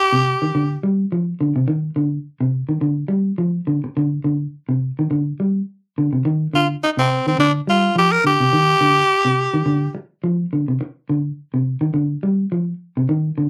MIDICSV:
0, 0, Header, 1, 4, 480
1, 0, Start_track
1, 0, Key_signature, -3, "minor"
1, 0, Tempo, 570342
1, 1417, Time_signature, 4, 2, 24, 8
1, 11358, End_track
2, 0, Start_track
2, 0, Title_t, "Tenor saxophone"
2, 0, Program_c, 0, 66
2, 0, Note_on_c, 0, 67, 111
2, 671, Note_off_c, 0, 67, 0
2, 5514, Note_on_c, 0, 65, 78
2, 5618, Note_off_c, 0, 65, 0
2, 5755, Note_on_c, 0, 63, 83
2, 5811, Note_off_c, 0, 63, 0
2, 5884, Note_on_c, 0, 60, 83
2, 6100, Note_off_c, 0, 60, 0
2, 6126, Note_on_c, 0, 60, 82
2, 6217, Note_off_c, 0, 60, 0
2, 6226, Note_on_c, 0, 62, 92
2, 6332, Note_off_c, 0, 62, 0
2, 6477, Note_on_c, 0, 65, 90
2, 6690, Note_off_c, 0, 65, 0
2, 6722, Note_on_c, 0, 67, 104
2, 6833, Note_on_c, 0, 70, 102
2, 6846, Note_off_c, 0, 67, 0
2, 6937, Note_off_c, 0, 70, 0
2, 6960, Note_on_c, 0, 67, 115
2, 8354, Note_off_c, 0, 67, 0
2, 11358, End_track
3, 0, Start_track
3, 0, Title_t, "Clean electric guitar"
3, 0, Program_c, 1, 27
3, 105, Note_on_c, 1, 48, 68
3, 287, Note_off_c, 1, 48, 0
3, 352, Note_on_c, 1, 51, 70
3, 431, Note_off_c, 1, 51, 0
3, 461, Note_on_c, 1, 50, 92
3, 639, Note_off_c, 1, 50, 0
3, 702, Note_on_c, 1, 55, 79
3, 880, Note_off_c, 1, 55, 0
3, 944, Note_on_c, 1, 53, 82
3, 1121, Note_off_c, 1, 53, 0
3, 1183, Note_on_c, 1, 50, 76
3, 1281, Note_off_c, 1, 50, 0
3, 1310, Note_on_c, 1, 48, 74
3, 1390, Note_off_c, 1, 48, 0
3, 1411, Note_on_c, 1, 51, 93
3, 1593, Note_off_c, 1, 51, 0
3, 1650, Note_on_c, 1, 50, 78
3, 1832, Note_off_c, 1, 50, 0
3, 2024, Note_on_c, 1, 48, 71
3, 2207, Note_off_c, 1, 48, 0
3, 2261, Note_on_c, 1, 51, 67
3, 2344, Note_off_c, 1, 51, 0
3, 2367, Note_on_c, 1, 50, 80
3, 2551, Note_off_c, 1, 50, 0
3, 2595, Note_on_c, 1, 55, 81
3, 2783, Note_off_c, 1, 55, 0
3, 2846, Note_on_c, 1, 53, 77
3, 3030, Note_off_c, 1, 53, 0
3, 3090, Note_on_c, 1, 50, 73
3, 3193, Note_off_c, 1, 50, 0
3, 3339, Note_on_c, 1, 50, 93
3, 3517, Note_off_c, 1, 50, 0
3, 3571, Note_on_c, 1, 50, 79
3, 3753, Note_off_c, 1, 50, 0
3, 3944, Note_on_c, 1, 48, 69
3, 4126, Note_off_c, 1, 48, 0
3, 4198, Note_on_c, 1, 51, 73
3, 4275, Note_off_c, 1, 51, 0
3, 4298, Note_on_c, 1, 50, 85
3, 4477, Note_off_c, 1, 50, 0
3, 4543, Note_on_c, 1, 55, 67
3, 4720, Note_off_c, 1, 55, 0
3, 5032, Note_on_c, 1, 50, 71
3, 5127, Note_off_c, 1, 50, 0
3, 5156, Note_on_c, 1, 48, 68
3, 5233, Note_off_c, 1, 48, 0
3, 5261, Note_on_c, 1, 51, 96
3, 5439, Note_off_c, 1, 51, 0
3, 5500, Note_on_c, 1, 50, 77
3, 5678, Note_off_c, 1, 50, 0
3, 5868, Note_on_c, 1, 48, 67
3, 6048, Note_off_c, 1, 48, 0
3, 6116, Note_on_c, 1, 51, 69
3, 6193, Note_off_c, 1, 51, 0
3, 6214, Note_on_c, 1, 50, 81
3, 6394, Note_off_c, 1, 50, 0
3, 6459, Note_on_c, 1, 55, 73
3, 6637, Note_off_c, 1, 55, 0
3, 6695, Note_on_c, 1, 53, 80
3, 6875, Note_off_c, 1, 53, 0
3, 6937, Note_on_c, 1, 50, 71
3, 7037, Note_off_c, 1, 50, 0
3, 7071, Note_on_c, 1, 48, 68
3, 7150, Note_off_c, 1, 48, 0
3, 7177, Note_on_c, 1, 51, 96
3, 7356, Note_off_c, 1, 51, 0
3, 7412, Note_on_c, 1, 50, 73
3, 7593, Note_off_c, 1, 50, 0
3, 7783, Note_on_c, 1, 48, 73
3, 7965, Note_off_c, 1, 48, 0
3, 8025, Note_on_c, 1, 51, 73
3, 8106, Note_off_c, 1, 51, 0
3, 8128, Note_on_c, 1, 50, 86
3, 8310, Note_off_c, 1, 50, 0
3, 8614, Note_on_c, 1, 53, 80
3, 8794, Note_off_c, 1, 53, 0
3, 8861, Note_on_c, 1, 50, 69
3, 8959, Note_off_c, 1, 50, 0
3, 8990, Note_on_c, 1, 48, 72
3, 9069, Note_off_c, 1, 48, 0
3, 9337, Note_on_c, 1, 50, 75
3, 9516, Note_off_c, 1, 50, 0
3, 9709, Note_on_c, 1, 48, 73
3, 9889, Note_off_c, 1, 48, 0
3, 9939, Note_on_c, 1, 51, 81
3, 10022, Note_off_c, 1, 51, 0
3, 10046, Note_on_c, 1, 50, 87
3, 10229, Note_off_c, 1, 50, 0
3, 10294, Note_on_c, 1, 55, 78
3, 10474, Note_off_c, 1, 55, 0
3, 10536, Note_on_c, 1, 53, 79
3, 10715, Note_off_c, 1, 53, 0
3, 10915, Note_on_c, 1, 48, 75
3, 10992, Note_off_c, 1, 48, 0
3, 11016, Note_on_c, 1, 51, 92
3, 11196, Note_off_c, 1, 51, 0
3, 11257, Note_on_c, 1, 50, 71
3, 11358, Note_off_c, 1, 50, 0
3, 11358, End_track
4, 0, Start_track
4, 0, Title_t, "Muted clean electric guitar strokes"
4, 3232, Note_on_c, 9, 29, 74
4, 3316, Note_off_c, 9, 29, 0
4, 8371, Note_on_c, 9, 29, 75
4, 8455, Note_off_c, 9, 29, 0
4, 9095, Note_on_c, 9, 29, 95
4, 9179, Note_off_c, 9, 29, 0
4, 11358, End_track
0, 0, End_of_file